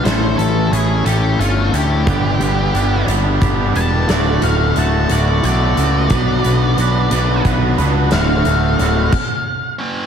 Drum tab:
CC |------|------|------|------|
HH |xxxxxx|xxxxxx|xxxxxx|xxxxxx|
SD |o-----|------|o-----|------|
BD |------|o---o-|------|o---o-|

CC |---x--|
HH |xxx---|
SD |o-----|
BD |---o--|